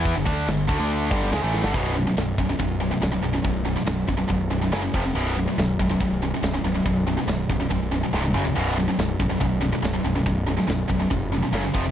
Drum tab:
CC |x---x---x---x---|----------------|----------------|----------------|
RD |----------------|x-x-x-x-x-x-x-x-|x-x-x-x-x-x-x-x-|x-x-x-x-x-x-x-x-|
SD |----o------oo-oo|----o-------o---|---oo-------o---|----o-------o---|
T2 |----------------|----------------|----------------|----------------|
FT |----------------|----------------|----------------|----------------|
BD |o-o---o---o-----|o-----o-o-------|o-----o-o-----o-|------o-o-------|

CC |----------------|----------------|----------------|
RD |x-x-x-x-x-x-----|x-x-x-x-x-x-x-x-|x-x-x-x-x-x-x-x-|
SD |----o-------o---|----o-------o---|---oo-------o---|
T2 |--------------o-|----------------|----------------|
FT |---------------o|----------------|----------------|
BD |o-----o-o-------|------o-o-------|o-----o-o-----o-|